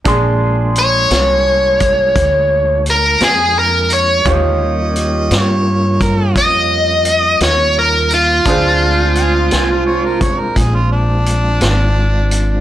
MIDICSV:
0, 0, Header, 1, 7, 480
1, 0, Start_track
1, 0, Tempo, 700935
1, 37, Time_signature, 12, 3, 24, 8
1, 8632, End_track
2, 0, Start_track
2, 0, Title_t, "Harmonica"
2, 0, Program_c, 0, 22
2, 2935, Note_on_c, 0, 75, 98
2, 3708, Note_off_c, 0, 75, 0
2, 3708, Note_on_c, 0, 73, 98
2, 4100, Note_off_c, 0, 73, 0
2, 4125, Note_on_c, 0, 70, 88
2, 4355, Note_off_c, 0, 70, 0
2, 6277, Note_on_c, 0, 80, 85
2, 6389, Note_off_c, 0, 80, 0
2, 6403, Note_on_c, 0, 77, 71
2, 6525, Note_on_c, 0, 80, 71
2, 6536, Note_off_c, 0, 77, 0
2, 6647, Note_on_c, 0, 77, 75
2, 6657, Note_off_c, 0, 80, 0
2, 6752, Note_off_c, 0, 77, 0
2, 6756, Note_on_c, 0, 73, 74
2, 6883, Note_on_c, 0, 70, 69
2, 6893, Note_off_c, 0, 73, 0
2, 6992, Note_off_c, 0, 70, 0
2, 6996, Note_on_c, 0, 73, 76
2, 7122, Note_on_c, 0, 70, 68
2, 7132, Note_off_c, 0, 73, 0
2, 7240, Note_on_c, 0, 68, 76
2, 7250, Note_off_c, 0, 70, 0
2, 7363, Note_on_c, 0, 65, 67
2, 7373, Note_off_c, 0, 68, 0
2, 7471, Note_off_c, 0, 65, 0
2, 7479, Note_on_c, 0, 62, 99
2, 8632, Note_off_c, 0, 62, 0
2, 8632, End_track
3, 0, Start_track
3, 0, Title_t, "Lead electric guitar"
3, 0, Program_c, 1, 29
3, 539, Note_on_c, 1, 73, 85
3, 1942, Note_off_c, 1, 73, 0
3, 1987, Note_on_c, 1, 70, 75
3, 2206, Note_off_c, 1, 70, 0
3, 2218, Note_on_c, 1, 68, 69
3, 2442, Note_off_c, 1, 68, 0
3, 2457, Note_on_c, 1, 70, 70
3, 2681, Note_off_c, 1, 70, 0
3, 2691, Note_on_c, 1, 73, 75
3, 2918, Note_off_c, 1, 73, 0
3, 4367, Note_on_c, 1, 75, 91
3, 5061, Note_off_c, 1, 75, 0
3, 5091, Note_on_c, 1, 73, 76
3, 5318, Note_off_c, 1, 73, 0
3, 5333, Note_on_c, 1, 70, 64
3, 5559, Note_off_c, 1, 70, 0
3, 5575, Note_on_c, 1, 65, 95
3, 6978, Note_off_c, 1, 65, 0
3, 8632, End_track
4, 0, Start_track
4, 0, Title_t, "Grand piano"
4, 0, Program_c, 2, 0
4, 31, Note_on_c, 2, 62, 55
4, 45, Note_on_c, 2, 68, 51
4, 54, Note_on_c, 2, 84, 60
4, 2889, Note_off_c, 2, 62, 0
4, 2896, Note_off_c, 2, 68, 0
4, 2900, Note_off_c, 2, 84, 0
4, 2912, Note_on_c, 2, 65, 49
4, 2924, Note_on_c, 2, 67, 45
4, 2934, Note_on_c, 2, 73, 52
4, 5768, Note_off_c, 2, 65, 0
4, 5774, Note_off_c, 2, 67, 0
4, 5779, Note_off_c, 2, 73, 0
4, 5790, Note_on_c, 2, 62, 47
4, 5804, Note_on_c, 2, 68, 44
4, 5813, Note_on_c, 2, 72, 54
4, 8632, Note_off_c, 2, 62, 0
4, 8632, Note_off_c, 2, 68, 0
4, 8632, Note_off_c, 2, 72, 0
4, 8632, End_track
5, 0, Start_track
5, 0, Title_t, "Tonewheel organ"
5, 0, Program_c, 3, 16
5, 36, Note_on_c, 3, 58, 55
5, 37, Note_on_c, 3, 56, 55
5, 37, Note_on_c, 3, 62, 52
5, 40, Note_on_c, 3, 65, 59
5, 2891, Note_off_c, 3, 58, 0
5, 2892, Note_off_c, 3, 56, 0
5, 2892, Note_off_c, 3, 62, 0
5, 2893, Note_off_c, 3, 65, 0
5, 2918, Note_on_c, 3, 59, 53
5, 2920, Note_on_c, 3, 56, 50
5, 2922, Note_on_c, 3, 50, 53
5, 2925, Note_on_c, 3, 65, 50
5, 3159, Note_off_c, 3, 59, 0
5, 3160, Note_off_c, 3, 56, 0
5, 3161, Note_off_c, 3, 50, 0
5, 3162, Note_off_c, 3, 65, 0
5, 3165, Note_on_c, 3, 58, 55
5, 3165, Note_on_c, 3, 61, 61
5, 3167, Note_on_c, 3, 55, 59
5, 3170, Note_on_c, 3, 65, 64
5, 5775, Note_off_c, 3, 58, 0
5, 5775, Note_off_c, 3, 61, 0
5, 5776, Note_off_c, 3, 55, 0
5, 5778, Note_off_c, 3, 65, 0
5, 5800, Note_on_c, 3, 62, 53
5, 5801, Note_on_c, 3, 60, 58
5, 5803, Note_on_c, 3, 57, 54
5, 5804, Note_on_c, 3, 54, 53
5, 6035, Note_off_c, 3, 60, 0
5, 6036, Note_off_c, 3, 62, 0
5, 6040, Note_off_c, 3, 57, 0
5, 6041, Note_off_c, 3, 54, 0
5, 6043, Note_on_c, 3, 56, 61
5, 6043, Note_on_c, 3, 60, 59
5, 6045, Note_on_c, 3, 62, 57
5, 6045, Note_on_c, 3, 65, 58
5, 8632, Note_off_c, 3, 56, 0
5, 8632, Note_off_c, 3, 60, 0
5, 8632, Note_off_c, 3, 62, 0
5, 8632, Note_off_c, 3, 65, 0
5, 8632, End_track
6, 0, Start_track
6, 0, Title_t, "Upright bass"
6, 0, Program_c, 4, 32
6, 36, Note_on_c, 4, 34, 70
6, 735, Note_off_c, 4, 34, 0
6, 760, Note_on_c, 4, 36, 80
6, 1458, Note_off_c, 4, 36, 0
6, 1475, Note_on_c, 4, 38, 67
6, 2176, Note_off_c, 4, 38, 0
6, 2197, Note_on_c, 4, 41, 76
6, 2897, Note_off_c, 4, 41, 0
6, 2915, Note_on_c, 4, 39, 74
6, 3616, Note_off_c, 4, 39, 0
6, 3637, Note_on_c, 4, 43, 89
6, 4336, Note_off_c, 4, 43, 0
6, 4353, Note_on_c, 4, 41, 71
6, 5054, Note_off_c, 4, 41, 0
6, 5072, Note_on_c, 4, 39, 79
6, 5773, Note_off_c, 4, 39, 0
6, 5791, Note_on_c, 4, 38, 77
6, 6492, Note_off_c, 4, 38, 0
6, 6519, Note_on_c, 4, 36, 82
6, 7216, Note_off_c, 4, 36, 0
6, 7232, Note_on_c, 4, 34, 75
6, 7932, Note_off_c, 4, 34, 0
6, 7955, Note_on_c, 4, 32, 86
6, 8632, Note_off_c, 4, 32, 0
6, 8632, End_track
7, 0, Start_track
7, 0, Title_t, "Drums"
7, 36, Note_on_c, 9, 42, 72
7, 37, Note_on_c, 9, 36, 97
7, 105, Note_off_c, 9, 42, 0
7, 106, Note_off_c, 9, 36, 0
7, 518, Note_on_c, 9, 42, 51
7, 586, Note_off_c, 9, 42, 0
7, 757, Note_on_c, 9, 42, 71
7, 765, Note_on_c, 9, 38, 90
7, 825, Note_off_c, 9, 42, 0
7, 833, Note_off_c, 9, 38, 0
7, 1234, Note_on_c, 9, 42, 58
7, 1237, Note_on_c, 9, 36, 68
7, 1302, Note_off_c, 9, 42, 0
7, 1305, Note_off_c, 9, 36, 0
7, 1476, Note_on_c, 9, 42, 78
7, 1477, Note_on_c, 9, 36, 69
7, 1545, Note_off_c, 9, 36, 0
7, 1545, Note_off_c, 9, 42, 0
7, 1957, Note_on_c, 9, 42, 52
7, 2026, Note_off_c, 9, 42, 0
7, 2194, Note_on_c, 9, 42, 72
7, 2202, Note_on_c, 9, 38, 103
7, 2263, Note_off_c, 9, 42, 0
7, 2271, Note_off_c, 9, 38, 0
7, 2670, Note_on_c, 9, 42, 54
7, 2739, Note_off_c, 9, 42, 0
7, 2913, Note_on_c, 9, 42, 71
7, 2914, Note_on_c, 9, 36, 98
7, 2982, Note_off_c, 9, 42, 0
7, 2983, Note_off_c, 9, 36, 0
7, 3395, Note_on_c, 9, 42, 52
7, 3463, Note_off_c, 9, 42, 0
7, 3635, Note_on_c, 9, 42, 71
7, 3643, Note_on_c, 9, 38, 96
7, 3704, Note_off_c, 9, 42, 0
7, 3712, Note_off_c, 9, 38, 0
7, 4113, Note_on_c, 9, 36, 69
7, 4115, Note_on_c, 9, 42, 55
7, 4182, Note_off_c, 9, 36, 0
7, 4184, Note_off_c, 9, 42, 0
7, 4353, Note_on_c, 9, 36, 71
7, 4353, Note_on_c, 9, 42, 70
7, 4422, Note_off_c, 9, 36, 0
7, 4422, Note_off_c, 9, 42, 0
7, 4827, Note_on_c, 9, 42, 59
7, 4896, Note_off_c, 9, 42, 0
7, 5070, Note_on_c, 9, 42, 76
7, 5079, Note_on_c, 9, 38, 95
7, 5139, Note_off_c, 9, 42, 0
7, 5147, Note_off_c, 9, 38, 0
7, 5550, Note_on_c, 9, 42, 59
7, 5618, Note_off_c, 9, 42, 0
7, 5790, Note_on_c, 9, 42, 72
7, 5791, Note_on_c, 9, 36, 101
7, 5859, Note_off_c, 9, 36, 0
7, 5859, Note_off_c, 9, 42, 0
7, 6269, Note_on_c, 9, 42, 53
7, 6338, Note_off_c, 9, 42, 0
7, 6513, Note_on_c, 9, 42, 71
7, 6521, Note_on_c, 9, 38, 92
7, 6581, Note_off_c, 9, 42, 0
7, 6589, Note_off_c, 9, 38, 0
7, 6991, Note_on_c, 9, 36, 74
7, 6992, Note_on_c, 9, 42, 54
7, 7060, Note_off_c, 9, 36, 0
7, 7061, Note_off_c, 9, 42, 0
7, 7232, Note_on_c, 9, 36, 74
7, 7233, Note_on_c, 9, 42, 72
7, 7301, Note_off_c, 9, 36, 0
7, 7302, Note_off_c, 9, 42, 0
7, 7713, Note_on_c, 9, 42, 51
7, 7782, Note_off_c, 9, 42, 0
7, 7949, Note_on_c, 9, 42, 71
7, 7957, Note_on_c, 9, 38, 101
7, 8018, Note_off_c, 9, 42, 0
7, 8026, Note_off_c, 9, 38, 0
7, 8431, Note_on_c, 9, 42, 55
7, 8500, Note_off_c, 9, 42, 0
7, 8632, End_track
0, 0, End_of_file